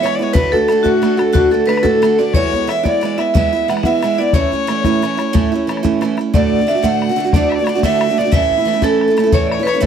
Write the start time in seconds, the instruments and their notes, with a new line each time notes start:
0.02 steel-string acoustic guitar E3 G#3 B3, vibraphone C#5, fiddle C#5, bodhran
0.07 steel-string acoustic guitar E4
0.15 steel-string acoustic guitar E4, fiddle D5
0.21 steel-string acoustic guitar G#3 B3, fiddle C#5
0.33 steel-string acoustic guitar D2 A2 D3 A3 D4 F#4, vibraphone B4, fiddle B4, bodhran
0.45 bodhran
0.52 steel-string acoustic guitar A3 D4 F#4, vibraphone A4, fiddle A4, bodhran
0.57 steel-string acoustic guitar D3
0.68 steel-string acoustic guitar D3 A3 D4 F#4, bodhran
0.83 steel-string acoustic guitar D2 A2 D3 A3 D4 F#4, vibraphone F#4, fiddle F#4, bodhran
1.02 steel-string acoustic guitar D3 A3 D4 F#4, bodhran
1.17 steel-string acoustic guitar D3 A3 D4 F#4, vibraphone A4, fiddle A4, bodhran
1.33 steel-string acoustic guitar D2 A2 D3 A3 D4 F#4, vibraphone F#4, fiddle F#4, bodhran
1.51 steel-string acoustic guitar D3 A3 D4 F#4, vibraphone A4, fiddle A4
1.65 steel-string acoustic guitar D3 A3 D4 F#4, vibraphone B4, fiddle B4, bodhran
1.77 bodhran
1.82 steel-string acoustic guitar D2 A2 D3 A3 D4 F#4, fiddle A4, vibraphone A4, bodhran
2.02 steel-string acoustic guitar D3 A3 D4 F#4, bodhran
2.18 steel-string acoustic guitar D3 A3 D4 F#4, fiddle D5, vibraphone D5
2.34 steel-string acoustic guitar E3 G#3 B3 E4, fiddle C#5, vibraphone C#5, bodhran
2.43 bodhran
2.53 steel-string acoustic guitar G#3 B3 E4, bodhran
2.67 steel-string acoustic guitar E3 G#3 B3, vibraphone E5, fiddle E5, bodhran
2.71 steel-string acoustic guitar E4
2.83 steel-string acoustic guitar E3 G#3 B3 E4, vibraphone D5, fiddle D5, bodhran
3.01 steel-string acoustic guitar E3 G#3 B3 E4, bodhran
3.18 steel-string acoustic guitar G#3 B3 E4, vibraphone E5, fiddle E5, bodhran
3.34 steel-string acoustic guitar E3 G#3 B3 E4, vibraphone E5, fiddle E5, bodhran
3.53 steel-string acoustic guitar G#3 B3 E4
3.68 steel-string acoustic guitar E3 G#3 B3 E4, fiddle F#5, vibraphone F#5, bodhran
3.77 bodhran
3.83 steel-string acoustic guitar E3 G#3 B3 E4, vibraphone E5, fiddle E5, bodhran
4.02 steel-string acoustic guitar E3 G#3 B3 E4, bodhran
4.18 steel-string acoustic guitar G#3 B3 E4, vibraphone D5, fiddle D5
4.33 steel-string acoustic guitar A2 E3 A3 C#4 E4, fiddle C#5, vibraphone C#5, bodhran
4.43 bodhran
4.52 steel-string acoustic guitar A3 C#4 E4, bodhran
4.67 steel-string acoustic guitar E3 A3 C#4 E4, bodhran
4.84 steel-string acoustic guitar A2 E3 A3 C#4 E4, bodhran
5.02 steel-string acoustic guitar E3 A3 C#4 E4, bodhran
5.17 steel-string acoustic guitar A3 C#4 E4, bodhran
5.33 steel-string acoustic guitar A2 E3 A3 C#4 E4, bodhran
5.52 steel-string acoustic guitar A3 C#4 E4
5.67 steel-string acoustic guitar E3 A3 C#4 E4, bodhran
5.77 bodhran
5.83 steel-string acoustic guitar A2 E3 A3 C#4 E4, bodhran
6.01 steel-string acoustic guitar E3 A3 C#4 E4, bodhran
6.17 steel-string acoustic guitar A3 C#4 E4, bodhran
6.34 steel-string acoustic guitar D2 A2 D3 A3 D4 F#4, vibraphone D5, fiddle D5, bodhran
6.53 bodhran
6.59 steel-string acoustic guitar D3 A3 D4 F#4
6.67 steel-string acoustic guitar D3 A3 D4, vibraphone E5
6.71 steel-string acoustic guitar F#4
6.75 steel-string acoustic guitar D3 A3 D4 F#4
6.83 steel-string acoustic guitar D2 A2 D3 A3 D4 F#4, fiddle F#5, vibraphone F#5, bodhran
7.02 bodhran
7.09 steel-string acoustic guitar D3 A3 D4 F#4
7.16 steel-string acoustic guitar D3 A3 D4 F#4
7.24 steel-string acoustic guitar D3 A3 D4 F#4
7.33 steel-string acoustic guitar D2 A2 D3 A3 D4 F#4, vibraphone D5, fiddle D5, bodhran
7.49 fiddle E5, bodhran
7.55 fiddle D5
7.59 steel-string acoustic guitar D3 A3 D4 F#4
7.64 steel-string acoustic guitar D3 A3, fiddle C#5, bodhran
7.69 steel-string acoustic guitar D4 F#4, fiddle D5
7.75 steel-string acoustic guitar D3 A3 D4 F#4
7.83 steel-string acoustic guitar D2 A2 D3 A3 D4 F#4, vibraphone E5, fiddle E5, bodhran
8.01 bodhran
8.08 steel-string acoustic guitar D3 A3 D4 F#4
8.18 steel-string acoustic guitar D3 A3 D4 F#4, fiddle D5, vibraphone D5
8.24 steel-string acoustic guitar D3 A3 D4 F#4
8.32 steel-string acoustic guitar A2 E3 A3 C#4 E4, fiddle E5, vibraphone E5, bodhran
8.51 bodhran
8.58 steel-string acoustic guitar A3 C#4 E4
8.65 steel-string acoustic guitar E3 A3 C#4 E4
8.73 steel-string acoustic guitar A3 C#4 E4
8.82 steel-string acoustic guitar A2 E3 A3 C#4 E4, vibraphone A4, fiddle A4, bodhran
9.01 bodhran
9.08 steel-string acoustic guitar A3 C#4 E4
9.17 steel-string acoustic guitar E3 A3 C#4 E4, bodhran
9.24 steel-string acoustic guitar A3 C#4 E4
9.32 steel-string acoustic guitar A2 E3 A3 C#4 E4, fiddle C#5, vibraphone C#5, bodhran
9.47 vibraphone D5
9.51 fiddle C#5, vibraphone C#5, bodhran
9.59 steel-string acoustic guitar A3 C#4 E4, vibraphone B4
9.65 steel-string acoustic guitar E3 A3 C#4 E4, fiddle C#5, vibraphone C#5, bodhran
9.73 steel-string acoustic guitar A3 C#4 E4
9.80 steel-string acoustic guitar A2 E3 A3 C#4 E4, bodhran